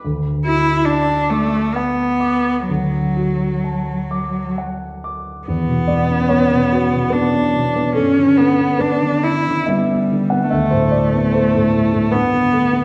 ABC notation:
X:1
M:3/4
L:1/16
Q:1/4=71
K:D
V:1 name="Cello"
z2 E2 D2 A,2 B,4 | F,8 z4 | B,8 D4 | C2 B,2 D2 E2 G,4 |
A,8 B,4 |]
V:2 name="Grand piano"
z12 | z12 | z2 d2 c4 B4 | A4 B4 e3 f |
e =c d2 c4 B4 |]
V:3 name="Grand piano"
D,,2 F2 a2 d'2 f2 d'2 | D,,2 F2 a2 d'2 f2 d'2 | E,, B,, B, C B, B,, F B,, B, D B,, B, | G,, D, B, C B, D, E D, B, D D, B, |
D,, A,, A, B, A, A,, E A,, G,, D, A, B, |]